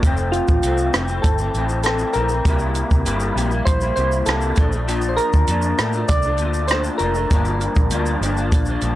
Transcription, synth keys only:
0.32 F4
1.22 A4
1.84 A4
2.13 A#4
3.65 C5
3.96 C5
4.26 A4
5.09 C5
5.17 A#4
6.08 D5
6.68 C5
6.98 A#4

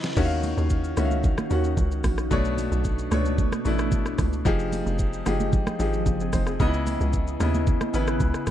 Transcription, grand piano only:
Already playing: C#3 B3 E4 C#5 D#5
0.17 D#3 C#4 F#4 E5
0.25 F5
0.97 D#3 C#4 F#4 E5
1.05 F5
1.50 D#3 C#4 F#4 F#5
2.31 B2 A3 D4 C#5
3.11 B2 A3 D4 C#5
3.65 B2 A3 D4 E4
4.45 F3 D#4 G4 G#4
5.26 F3 D#4 G4 G#4
5.79 F3 D#4 G4 G#4
6.21 C4 G#4
6.34 D#4 C5
6.47 C4 G#4
6.60 C#3 B3 D#4 D#5
6.67 E4
7.40 C#3 B3 E4 D#5
7.93 C#3 B3 E4 B4

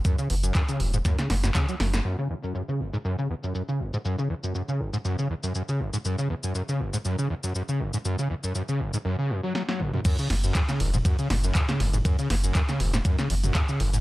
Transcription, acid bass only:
0.05 F#2
0.19 C#3
0.30 E2
0.43 F#2
0.55 F#2
0.69 C#3
0.80 F#1
0.94 G#2
1.05 F#2
1.19 C#3
1.30 F#2
1.44 F#2
1.55 C#3
1.68 F#3
1.80 F#2
1.93 F#2
2.05 F#2
2.18 C#3
2.30 E2
2.43 F#2
2.55 F#2
2.68 C#3
2.80 F#1
2.93 G#2
3.05 F#2
3.18 C#3
3.30 E2
3.43 F#2
3.55 F#2
3.69 C#3
3.80 F#1
3.93 G#2
4.05 F#2
4.18 C#3
4.30 E2
4.43 F#2
4.55 F#2
4.68 C#3
4.80 F#1
4.93 G#2
5.05 F#2
5.18 C#3
5.30 E2
5.43 F#2
5.55 F#2
5.68 C#3
5.80 F#1
5.93 G#2
6.05 F#2
6.19 C#3
6.30 E2
6.43 F#2
6.55 F#2
6.69 C#3
6.80 F#1
6.93 G#2
7.05 F#2
7.18 C#3
7.30 E2
7.44 F#2
7.55 F#2
7.69 C#3
7.80 F#1
7.94 G#2
8.05 F#2
8.19 C#3
8.30 E2
8.44 F#2
8.55 F#2
8.69 C#3
8.80 F#1
8.93 G#2
9.05 F#2
9.18 C#3
9.30 F#2
9.43 F#3
9.55 F#3
9.68 F#3
9.80 F#1
9.94 F#2
10.05 F#2
10.19 C#3
10.30 E2
10.44 F#2
10.55 F#2
10.69 C#3
10.80 F#1
10.94 G#2
11.05 F#2
11.19 C#3
11.30 E2
11.44 F#2
11.55 F#2
11.69 C#3
11.80 F#1
11.94 G#2
12.05 F#2
12.19 C#3
12.30 E2
12.44 F#2
12.55 F#2
12.69 C#3
12.80 F#1
12.94 G#2
13.05 F#2
13.19 C#3
13.30 E2
13.44 F#2
13.55 F#2
13.69 C#3
13.80 F#1
13.93 G#2

